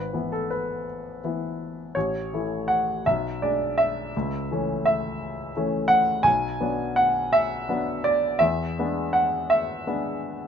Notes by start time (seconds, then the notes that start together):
Already playing: G#1 B4
0.13 E3 B3 E4
0.32 A4
0.51 B4
1.24 E3 B3 E4
1.95 A1 C#5
2.33 E3 A3 E4
2.68 F#5
3.06 B1 E5
3.42 G#3 D4 D5
3.78 E5
4.17 C#2
4.51 E3 A3 C#4
4.86 E5
5.56 E3 A3 C#4
5.88 F#5
6.23 B1 G#5
6.60 F#3 B3 D4
6.96 F#5
7.33 E5
7.69 F#3 B3 D4
8.04 D5
8.39 E2 E5
8.79 G#3 B3 D4
9.13 F#5
9.50 E5
9.87 G#3 B3 D4